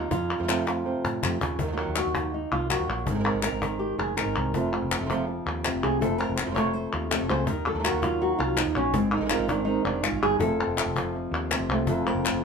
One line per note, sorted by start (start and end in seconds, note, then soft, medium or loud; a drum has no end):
0.00 0.11 F2 medium
0.00 0.12 D#4 medium
0.11 0.35 F2 medium
0.11 1.60 F2 medium
0.11 1.59 F4 medium
0.11 muted nylon-string guitar stroke medium
0.11 cajon bass medium
0.38 0.95 F2 medium
0.38 0.42 F3 soft
0.38 0.42 A3 soft
0.38 0.43 C4 soft
0.38 0.44 F4 soft
0.43 0.47 F3 medium
0.43 0.47 A3 medium
0.43 0.48 C4 medium
0.43 0.48 F4 medium
0.48 0.66 C3 medium
0.48 0.66 F3 medium
0.48 0.66 A3 medium
0.48 0.66 C4 medium
0.48 0.65 F4 medium
0.48 cajon slap loud
0.48 clap medium
0.66 0.84 A3 soft
0.66 0.84 C4 soft
0.66 0.84 F4 soft
0.66 cajon slap medium
0.66 clap soft
0.84 1.21 C3 medium
0.84 1.21 F3 medium
0.84 1.22 A3 medium
0.84 1.22 C4 medium
0.84 1.21 F4 medium
1.04 1.21 A2 medium
1.04 cajon bass medium
1.22 1.40 F2 medium
1.22 1.41 C3 medium
1.22 1.40 A3 soft
1.22 1.40 C4 soft
1.22 1.40 F4 soft
1.22 cajon bass loud
1.22 clap medium
1.40 1.58 D#2 medium
1.40 1.60 C#3 medium
1.40 muted nylon-string guitar stroke medium
1.40 cajon bass medium
1.59 1.83 D#2 medium
1.59 1.62 D#3 medium
1.59 2.70 D#3 medium
1.59 1.62 F#3 medium
1.59 1.63 A#3 medium
1.59 1.63 F4 medium
1.59 cajon bass medium
1.63 1.67 D#3 soft
1.63 1.67 F#3 soft
1.63 1.67 A#3 soft
1.63 1.67 F4 soft
1.68 1.71 D#3 soft
1.68 1.72 F#3 soft
1.68 1.72 A#3 soft
1.68 1.72 F4 medium
1.72 1.76 D#3 soft
1.72 1.76 F#3 medium
1.72 1.76 A#3 medium
1.72 1.76 F4 medium
1.77 1.95 D#3 medium
1.77 1.95 F#3 medium
1.77 1.95 A#3 medium
1.77 1.96 F4 medium
1.88 2.03 D#2 medium
1.96 2.31 F#3 soft
1.96 2.31 A#3 soft
1.96 2.34 F#4 medium
1.96 cajon slap medium
1.96 clap medium
2.06 2.45 D#2 medium
2.15 3.05 A#3 medium
2.15 2.34 D#4 soft
2.15 cajon bass medium
2.32 2.52 D#4 medium
2.32 muted nylon-string guitar stroke soft
2.52 2.75 C2 medium
2.52 2.70 F4 medium
2.69 2.87 D#3 soft
2.69 2.88 F3 medium
2.69 2.88 F#3 soft
2.69 2.87 A#3 soft
2.69 2.86 F4 soft
2.69 3.07 F#4 medium
2.69 cajon slap medium
2.69 clap medium
2.80 2.87 D#2 medium
2.87 3.04 A#1 medium
2.87 3.07 F#3 medium
2.87 3.05 F#3 soft
2.87 3.06 A#3 soft
2.87 3.06 F4 soft
3.05 3.30 G#1 medium
3.05 4.17 G#2 medium
3.05 3.09 G#3 medium
3.05 3.09 C4 medium
3.05 3.10 D#4 medium
3.05 3.10 A#4 medium
3.05 cajon bass medium
3.10 3.13 G#3 soft
3.10 3.13 C4 soft
3.10 3.14 D#4 soft
3.10 3.15 A#4 soft
3.14 3.18 G#3 soft
3.14 3.18 C4 soft
3.14 3.19 D#4 medium
3.14 3.19 A#4 soft
3.19 3.23 G#3 medium
3.19 3.23 C4 medium
3.19 3.23 D#4 medium
3.19 3.23 A#4 medium
3.24 3.42 G#3 medium
3.24 3.42 C4 medium
3.24 3.42 D#4 medium
3.24 3.41 A#4 medium
3.34 3.50 G#1 medium
3.42 3.79 C4 soft
3.42 3.79 D#4 soft
3.42 3.79 A#4 soft
3.42 3.79 A#4 medium
3.42 cajon slap loud
3.42 clap medium
3.52 3.92 G#1 medium
3.62 4.54 D#3 medium
3.62 cajon bass medium
3.79 3.98 G4 medium
3.79 muted nylon-string guitar stroke soft
3.98 4.22 F1 medium
3.98 4.16 G#4 medium
3.98 cajon slap soft
4.17 4.53 G#2 medium
4.17 4.35 G#3 soft
4.17 4.35 C4 soft
4.17 4.36 D#4 soft
4.17 4.54 A#4 medium
4.17 4.35 A#4 soft
4.17 cajon slap medium
4.17 clap medium
4.26 4.34 G#1 medium
4.36 4.52 C2 medium
4.36 4.54 C4 soft
4.36 4.54 D#4 soft
4.36 4.53 A#4 soft
4.36 cajon slap soft
4.54 6.01 F2 medium
4.54 4.72 C3 medium
4.54 4.72 F3 medium
4.54 4.72 A3 medium
4.54 6.00 A3 soft
4.54 4.72 C4 medium
4.54 5.12 C4 soft
4.54 4.71 F4 medium
4.54 5.83 F4 soft
4.54 cajon bass medium
4.72 4.96 A3 soft
4.72 4.96 C4 soft
4.72 4.97 F4 soft
4.82 4.98 F1 medium
4.91 cajon slap loud
4.91 clap medium
4.96 5.00 F3 soft
4.96 5.00 A3 soft
4.96 5.00 C4 soft
4.96 5.01 F4 soft
5.01 5.39 F1 medium
5.01 5.04 F3 medium
5.01 5.05 A3 medium
5.01 5.05 C4 soft
5.01 5.05 F4 medium
5.06 5.09 F3 medium
5.06 5.09 A3 medium
5.06 5.10 C4 medium
5.06 5.10 F4 medium
5.10 5.26 C3 medium
5.10 5.26 F3 medium
5.10 6.56 F3 medium
5.10 5.27 A3 medium
5.10 5.27 C4 medium
5.10 5.46 C4 soft
5.10 5.27 F4 medium
5.10 cajon bass medium
5.27 muted nylon-string guitar stroke medium
5.46 5.69 D#2 medium
5.46 7.48 C4 soft
5.46 cajon slap soft
5.64 5.99 C3 medium
5.64 5.82 F3 soft
5.64 5.83 A3 soft
5.64 5.83 C4 soft
5.64 5.81 F4 soft
5.64 cajon slap loud
5.64 clap medium
5.74 5.82 F1 medium
5.82 5.99 C2 medium
5.82 6.00 A3 soft
5.82 6.01 C4 soft
5.82 6.00 F4 soft
5.82 6.01 G#4 loud
6.01 6.25 F1 medium
6.01 7.48 F2 medium
6.01 6.18 C3 medium
6.01 6.19 F3 medium
6.01 6.19 A3 medium
6.01 6.19 C4 medium
6.01 6.18 F4 medium
6.01 6.18 A4 medium
6.01 cajon bass medium
6.18 6.41 A3 soft
6.18 6.41 C4 soft
6.18 6.41 F4 soft
6.18 6.36 A#4 medium
6.29 6.45 F1 medium
6.36 6.54 C5 medium
6.36 cajon slap medium
6.36 clap medium
6.42 6.45 F3 soft
6.42 6.46 A3 soft
6.42 6.46 C4 soft
6.42 6.46 F4 soft
6.46 6.86 F1 medium
6.46 6.50 F3 medium
6.46 6.50 A3 soft
6.46 6.50 C4 medium
6.46 6.50 F4 soft
6.51 6.54 F3 medium
6.51 6.55 A3 soft
6.51 6.55 C4 medium
6.51 6.55 F4 medium
6.51 6.73 C#5 loud
6.55 6.72 C3 medium
6.55 6.73 F3 medium
6.55 6.73 A3 medium
6.55 7.46 A3 medium
6.55 6.73 C4 medium
6.55 6.73 F4 medium
6.55 cajon bass medium
6.73 6.92 C5 medium
6.73 muted nylon-string guitar stroke medium
6.73 cajon slap soft
6.93 7.16 D#2 medium
6.93 7.11 F4 medium
6.93 cajon slap soft
7.09 7.29 C3 medium
7.09 7.28 F3 soft
7.09 7.28 A3 soft
7.09 7.28 C4 soft
7.09 7.26 F4 soft
7.09 7.29 A4 medium
7.09 cajon slap loud
7.09 clap medium
7.21 7.29 F1 medium
7.28 7.45 C#2 medium
7.28 7.48 C#3 medium
7.28 7.47 A3 soft
7.28 7.47 C4 soft
7.28 7.46 F4 soft
7.28 7.48 C5 loud
7.47 7.71 D#2 medium
7.47 8.93 D#3 medium
7.47 7.66 A#4 medium
7.47 muted nylon-string guitar stroke medium
7.47 cajon bass loud
7.65 7.74 F#3 soft
7.65 7.74 A#3 soft
7.65 7.74 F4 soft
7.65 7.85 A4 medium
7.75 7.90 D#2 medium
7.75 7.78 D#3 soft
7.75 7.78 F#3 soft
7.75 7.79 A#3 soft
7.75 7.79 F4 soft
7.79 7.82 D#3 medium
7.79 7.83 F#3 soft
7.79 7.83 A#3 medium
7.79 7.84 F4 medium
7.84 8.02 D#3 medium
7.84 8.02 F#3 medium
7.84 8.02 A#3 medium
7.84 8.01 F4 medium
7.84 8.03 F#4 medium
7.84 cajon slap medium
7.84 clap medium
7.93 8.32 D#2 medium
8.02 8.58 F#3 medium
8.02 8.19 F#3 soft
8.02 8.20 A#3 soft
8.02 8.20 F4 soft
8.02 8.21 F4 medium
8.02 cajon bass medium
8.20 8.57 D#3 medium
8.20 8.57 F#3 medium
8.20 8.57 A#3 medium
8.20 8.58 F4 medium
8.20 8.40 F#4 medium
8.20 cajon slap soft
8.39 8.63 C2 medium
8.39 8.57 F4 medium
8.57 8.76 F3 medium
8.57 8.76 D#4 medium
8.57 muted nylon-string guitar stroke soft
8.57 cajon slap loud
8.57 clap medium
8.66 8.74 D#2 medium
8.75 8.91 A#1 medium
8.75 8.95 F#3 medium
8.75 8.95 C#4 medium
8.93 9.17 G#1 medium
8.93 10.04 G#2 medium
8.93 9.12 C4 medium
8.93 muted nylon-string guitar stroke medium
8.93 cajon bass loud
9.12 9.16 C4 soft
9.12 9.31 D#4 medium
9.12 9.16 D#4 soft
9.12 9.16 A#4 soft
9.16 9.20 G#3 soft
9.16 9.20 C4 soft
9.16 9.20 D#4 soft
9.16 9.21 A#4 medium
9.20 9.37 G#1 medium
9.20 9.24 G#3 medium
9.20 9.24 C4 medium
9.20 9.25 D#4 medium
9.20 9.25 A#4 medium
9.25 9.28 G#3 medium
9.25 9.29 C4 medium
9.25 9.29 D#4 medium
9.25 9.30 A#4 medium
9.30 9.48 G#3 medium
9.30 9.48 C4 medium
9.30 9.48 D#4 medium
9.30 9.49 F4 loud
9.30 9.47 A#4 medium
9.30 cajon slap medium
9.30 clap medium
9.39 9.78 G#1 medium
9.48 10.41 D#3 medium
9.48 9.65 C4 soft
9.48 9.64 D4 medium
9.48 9.66 D#4 soft
9.48 9.67 A#4 soft
9.48 cajon bass medium
9.65 10.02 G#3 medium
9.65 10.02 C4 medium
9.65 9.85 D#4 loud
9.65 10.03 D#4 medium
9.65 10.02 A#4 medium
9.65 cajon slap soft
9.84 10.09 F1 medium
9.84 10.04 D4 medium
10.03 10.22 G#2 medium
10.03 10.22 F4 medium
10.03 muted nylon-string guitar stroke medium
10.03 cajon slap loud
10.03 clap medium
10.12 10.20 G#1 medium
10.21 10.37 G1 medium
10.21 10.41 G2 medium
10.21 10.39 G#4 loud
10.39 10.64 F1 loud
10.39 11.87 F2 medium
10.39 10.58 C3 medium
10.39 10.59 F3 medium
10.39 10.59 A3 medium
10.39 10.58 C4 medium
10.39 10.57 F4 medium
10.39 11.14 A4 loud
10.39 cajon bass loud
10.59 10.78 A3 soft
10.59 10.77 C4 soft
10.59 12.44 C4 soft
10.59 10.76 F4 soft
10.67 10.84 F1 medium
10.77 11.70 A3 soft
10.77 11.14 A3 soft
10.77 11.14 C4 soft
10.77 11.14 F4 soft
10.77 cajon slap medium
10.77 clap medium
10.86 11.26 F1 medium
10.96 12.43 F3 medium
10.96 cajon bass medium
11.14 muted nylon-string guitar stroke medium
11.14 cajon slap soft
11.31 11.56 D#2 medium
11.31 cajon slap soft
11.50 11.87 C3 medium
11.50 11.69 F3 soft
11.50 11.69 A3 soft
11.50 11.69 C4 soft
11.50 11.68 F4 soft
11.50 cajon slap loud
11.50 clap medium
11.60 11.68 F1 medium
11.69 11.85 C2 medium
11.69 11.87 A3 soft
11.69 11.88 C4 soft
11.69 11.87 F4 medium
11.87 12.11 F1 medium
11.87 12.44 F2 medium
11.87 12.06 C3 medium
11.87 12.06 F3 medium
11.87 12.06 A3 medium
11.87 12.05 C4 medium
11.87 12.04 F4 medium
11.87 12.07 A4 medium
11.87 cajon bass loud
12.05 12.25 A3 soft
12.05 12.24 C4 soft
12.05 12.24 F4 soft
12.05 12.26 A#4 medium
12.15 12.31 F1 medium
12.25 12.44 A3 soft
12.25 12.44 C4 soft
12.25 12.44 F4 soft
12.25 12.44 C5 loud
12.25 cajon slap medium
12.25 clap medium
12.33 12.44 F1 medium